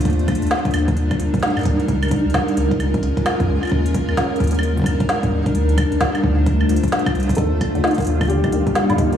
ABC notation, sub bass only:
X:1
M:4/4
L:1/16
Q:"Swing 16ths" 1/4=131
K:Eblyd
V:1 name="Sub bass" clef=bass
E,,2 z E,, z2 E,,3 z E,, z2 G,, E,, z | _D,,2 z D,, z2 D,,3 z D,, z2 F,, D,, z | E,,2 z E,, z2 E,,3 z E,, z2 G,, E,, z | D,,2 z D,, z2 D,,3 z D,, z3 C,, z |
E,,2 z E,, z2 E,,3 z E,, z2 G,, E,, z |]